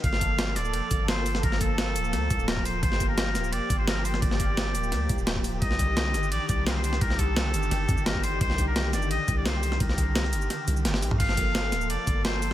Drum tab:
CC |----------------|----------------|----------------|----------------|
RD |b---b---b---b---|b---b---b---b---|b---b---b---b---|b---b---b---b---|
HH |x-x-x-x-x-x-x-o-|x-x-x-x-x-x-x-o-|x-x-x-x-x-x-x-o-|x-x-x-x-x-x-x-o-|
SH |--x-x-xx--x---x-|--x-x-xx--xx--x-|--x-x-xx--x---x-|--x-x-xx--xx--x-|
SD |-o--o-o-----o--o|-o--o---o---o---|-o--o-o-----o--o|-o--o---o---o---|
T2 |----------------|----------------|----------------|----------------|
BD |o-o-------o-----|o-o-------o--o--|o-o-------o-----|o-o-------o--o--|

CC |----------------|----------------|----------------|----------------|
RD |b---b---b---b---|b---b---b---b---|b---b---b---b---|b---b---b---b---|
HH |x-x-x-x-x-x-x-o-|x-x-x-x-x-x-x-o-|x-x-x-x-x-x-x-o-|x-x-x-x-x-x-x-o-|
SH |--x-x-xx--x---x-|--x-x-xx--xx--x-|--x-x-xx--x---x-|--x-x-xx--xx--x-|
SD |-o--o-o-----o--o|-o--o---o---o---|-o--o-o-----o--o|-o--oo--o---oo--|
T2 |----------------|----------------|----------------|---------------o|
BD |o-o-------o-----|o-o-------o--o--|o-o-------o-----|o-o-------------|

CC |x---------------|
RD |b---b---b---b---|
HH |x-x-x-x-x-x-x-o-|
SH |--x-x-xx--x---x-|
SD |-o--o-o-----o---|
T2 |----------------|
BD |o-o-------o-----|